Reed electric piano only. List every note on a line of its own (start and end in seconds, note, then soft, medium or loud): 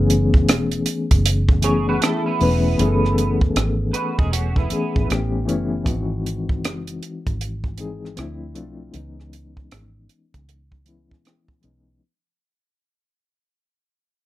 0.00 1.17 E3 medium
0.00 1.17 A3 medium
0.00 1.18 B3 medium
0.00 1.18 C#4 medium
0.00 1.18 G#4 medium
1.61 2.35 E3 medium
1.61 2.35 A3 medium
1.61 2.36 B3 medium
1.61 2.37 C#4 medium
1.61 2.37 G#4 medium
2.40 2.76 E3 medium
2.40 2.77 A3 medium
2.40 2.77 B3 medium
2.40 2.78 C#4 medium
2.40 2.78 B4 medium
2.78 4.25 E3 medium
2.78 4.25 A3 medium
2.78 4.26 B3 medium
2.78 4.26 C#4 medium
2.78 2.88 G#4 medium
2.88 4.30 A4 medium
4.70 5.07 E3 medium
4.70 5.07 A3 medium
4.70 5.08 B3 medium
4.70 5.09 C#4 medium
4.70 5.10 G#4 medium
5.08 5.44 E3 medium
5.08 5.45 A3 medium
5.08 5.45 B3 medium
5.08 5.46 C#4 medium
5.08 5.47 G4 loud
5.46 5.83 E3 medium
5.46 5.84 A3 medium
5.46 5.84 B3 medium
5.46 5.85 C#4 medium
5.46 5.85 E4 medium
5.84 7.32 E3 medium
5.84 7.32 G#3 medium
5.84 5.94 B3 medium
5.84 7.33 D#4 medium
5.84 7.33 F#4 medium
5.93 7.36 C4 medium
7.77 8.16 E3 medium
7.77 8.17 G#3 medium
7.77 8.16 C4 medium
7.77 8.17 D#4 medium
7.77 8.18 G#4 medium
8.16 8.53 F3 medium
8.16 8.53 A3 medium
8.16 8.53 C4 medium
8.16 8.54 D4 medium
8.16 8.54 E4 loud
8.55 8.91 F3 medium
8.55 8.91 A3 medium
8.55 8.92 C4 medium
8.55 8.92 D4 medium
8.55 8.93 F4 medium
8.91 10.39 E3 medium
8.91 10.39 G#3 medium
8.91 10.40 B3 medium
8.91 10.40 C#4 medium
8.91 10.41 D#4 medium
10.85 11.58 E3 medium
10.85 11.59 G#3 medium
10.85 11.59 B3 medium
10.85 11.60 C#4 medium
10.85 11.60 E4 medium
11.61 11.98 E3 medium
11.61 11.99 G#3 medium
11.61 11.99 B3 medium
11.61 12.00 C#4 medium
11.65 12.00 D#4 medium